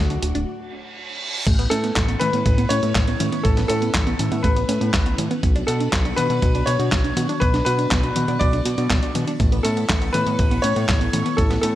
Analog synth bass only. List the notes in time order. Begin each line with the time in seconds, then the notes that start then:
Already playing: D2
0.23 D1
0.35 D1
1.47 A1
1.71 A2
1.96 A1
2.21 A2
2.33 A2
2.46 A1
2.70 A2
2.83 A2
2.95 A1
3.20 A2
3.45 A1
3.70 A2
3.94 A1
4.19 A2
4.32 A2
4.44 A1
4.69 A2
4.81 A2
4.94 A1
5.18 A2
5.43 B1
5.68 B2
5.93 B1
6.18 B2
6.30 B2
6.42 B1
6.67 B2
6.79 B2
6.92 B1
7.17 B2
7.42 B1
7.66 B2
7.91 B1
8.16 B2
8.28 B2
8.41 B1
8.65 B2
8.78 B2
8.90 B1
9.15 B2
9.40 A1
9.65 A2
9.89 A1
10.14 A2
10.27 A2
10.39 A1
10.64 A2
10.76 A2
10.89 A1
11.13 A2
11.38 A1
11.63 A2